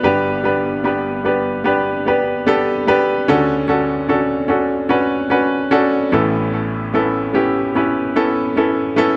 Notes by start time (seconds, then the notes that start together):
0.03 G1 G2 B3 D4 G4 B4
0.44 B3 D4 G4 B4
0.84 B3 D4 G4 B4
1.25 B3 D4 G4 B4
1.64 B3 D4 G4 B4
2.06 B3 D4 G4 B4
2.46 B3 D4 G4 A4
2.87 B3 D4 G4 B4
3.28 D2 D3 C#4 D4 F#4 A4
3.68 C#4 D4 F#4 A4
4.09 C#4 D4 F#4 A4
4.48 C#4 D4 F#4 A4
4.89 C#4 D4 F#4 B4
5.30 C#4 D4 F#4 B4
5.71 C#4 D4 F#4 A4
6.12 A1 A2 B3 C#4 E4 A4
6.94 B3 C#4 E4 A4
7.33 B3 C#4 E4 G4
7.75 B3 C#4 E4 B4
8.16 B3 C#4 E4 A4
8.56 B3 C#4 E4 A4
8.96 B3 C#4 E4 A4